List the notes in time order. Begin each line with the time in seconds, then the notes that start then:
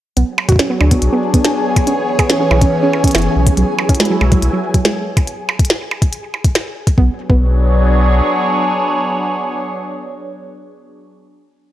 0.17 B1 F#3 B3 G#4 G#5, closed hi-hat
0.30 B3
0.38 percussion blips
0.45 F#4 G#4, kick, closed hi-hat
0.52 D4, kick
0.56 C#4, kick, snare, closed hi-hat
0.70 B3
0.79 D2 D4 C#5, percussion blips
0.91 B3, kick, closed hi-hat
1.02 B1, closed hi-hat
1.13 B3
1.34 B3, kick, closed hi-hat
1.45 D4, snare, closed hi-hat
1.76 kick, closed hi-hat, percussion blips
1.87 E3 C#4, closed hi-hat
2.08 C#4
2.19 G#4, kick, closed hi-hat, percussion blips
2.30 C#4, snare, closed hi-hat
2.40 C#4
2.51 B1 E4, percussion blips
2.61 C#4, kick, closed hi-hat
2.83 C#4
2.93 percussion blips
3.04 C#4, kick, closed hi-hat
3.08 closed hi-hat
3.11 E4, snare, closed hi-hat
3.15 F#1, closed hi-hat, percussion blips
3.18 closed hi-hat
3.22 closed hi-hat
3.36 B1
3.47 kick, closed hi-hat
3.57 B1 F#3, closed hi-hat
3.70 E4
3.79 percussion blips
3.89 C#4, kick, closed hi-hat
3.95 closed hi-hat
4.00 G#3, snare, closed hi-hat
4.05 closed hi-hat
4.10 F#3
4.21 B1 G#3, percussion blips
4.32 F#3, kick, closed hi-hat
4.42 B1, closed hi-hat
4.53 F#3
4.74 F#3, kick, closed hi-hat
4.85 G#3, snare, closed hi-hat
5.17 kick, closed hi-hat, percussion blips
5.27 closed hi-hat
5.49 percussion blips
5.59 kick, closed hi-hat
5.65 closed hi-hat
5.70 snare
5.91 percussion blips
6.02 kick, closed hi-hat
6.13 closed hi-hat
6.34 percussion blips
6.44 kick, closed hi-hat
6.55 snare, closed hi-hat, percussion blips
6.87 kick, closed hi-hat
6.98 B1 F#3 B3, kick
7.04 B3
7.11 D4
7.17 G#4
7.23 C#5
7.30 B1 B3, kick